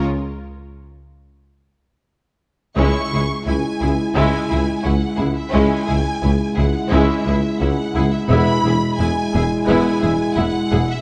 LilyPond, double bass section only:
\new Staff \with { instrumentName = "Double bass section" } { \clef bass \time 4/4 \key e \lydian \tempo 4 = 87 r1 | \key cis \minor cis,8 cis,8 cis,8 cis,8 cis,8 cis,8 cis,8 cis,8 | cis,8 cis,8 cis,8 cis,8 cis,8 cis,8 cis,8 cis,8 | e,,8 e,,8 e,,8 e,,8 e,,8 e,,8 e,,8 e,,8 | }